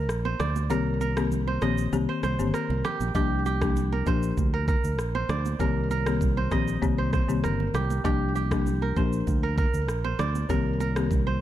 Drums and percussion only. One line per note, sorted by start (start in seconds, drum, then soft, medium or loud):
0.09 cross-stick medium
0.09 shaker medium
0.25 high conga medium
0.40 cross-stick loud
0.40 low conga medium
0.40 shaker medium
0.56 high conga medium
0.56 shaker medium
0.70 low conga medium
0.70 shaker medium
1.01 high conga medium
1.01 shaker soft
1.17 cross-stick loud
1.17 shaker medium
1.32 low conga medium
1.32 shaker medium
1.48 high conga medium
1.62 cross-stick medium
1.62 high conga medium
1.62 shaker medium
1.78 shaker medium
1.93 low conga medium
1.93 shaker medium
2.23 cross-stick medium
2.23 high conga medium
2.23 shaker soft
2.39 shaker medium
2.54 cross-stick medium
2.54 shaker medium
2.70 high conga medium
2.85 cross-stick loud
2.85 low conga medium
2.85 shaker medium
3.01 high conga medium
3.01 shaker medium
3.15 kick medium
3.15 low conga medium
3.15 shaker medium
3.46 high conga medium
3.46 shaker soft
3.61 kick medium
3.61 cross-stick loud
3.61 shaker medium
3.76 low conga medium
3.76 shaker medium
3.93 high conga medium
4.06 kick medium
4.06 high conga medium
4.06 shaker soft
4.23 shaker medium
4.38 kick medium
4.38 low conga medium
4.38 shaker medium
4.68 kick medium
4.68 high conga medium
4.68 shaker medium
4.84 shaker medium
4.99 cross-stick medium
4.99 shaker medium
5.15 high conga medium
5.29 cross-stick loud
5.29 low conga medium
5.29 shaker medium
5.46 high conga medium
5.46 shaker medium
5.60 kick medium
5.60 low conga medium
5.60 shaker medium
5.91 high conga medium
5.91 shaker soft
6.06 cross-stick loud
6.06 shaker medium
6.21 kick loud
6.21 low conga medium
6.21 shaker medium
6.37 high conga medium
6.51 kick medium
6.51 cross-stick medium
6.51 high conga medium
6.51 shaker medium
6.68 shaker medium
6.83 kick medium
6.83 low conga medium
6.83 shaker medium
7.13 kick medium
7.13 cross-stick medium
7.13 high conga medium
7.13 shaker medium
7.29 shaker medium
7.44 cross-stick medium
7.44 shaker medium
7.60 high conga medium
7.74 cross-stick loud
7.74 low conga medium
7.74 shaker medium
7.90 high conga medium
7.90 shaker medium
8.05 kick loud
8.05 low conga medium
8.05 shaker medium
8.36 high conga medium
8.36 shaker soft
8.51 kick medium
8.51 cross-stick loud
8.51 shaker medium
8.66 low conga medium
8.66 shaker medium
8.82 high conga medium
8.96 kick medium
8.96 high conga medium
8.96 shaker soft
9.13 shaker medium
9.27 kick medium
9.27 low conga medium
9.27 shaker medium
9.58 kick loud
9.58 high conga medium
9.58 shaker medium
9.74 shaker medium
9.88 cross-stick medium
9.88 shaker medium
10.05 high conga medium
10.19 cross-stick loud
10.19 low conga medium
10.19 shaker medium
10.35 high conga medium
10.35 shaker medium
10.50 kick medium
10.50 low conga medium
10.50 shaker medium
10.80 high conga medium
10.80 shaker soft
10.96 cross-stick loud
10.96 shaker medium
11.11 kick loud
11.11 low conga medium
11.11 shaker medium
11.27 high conga medium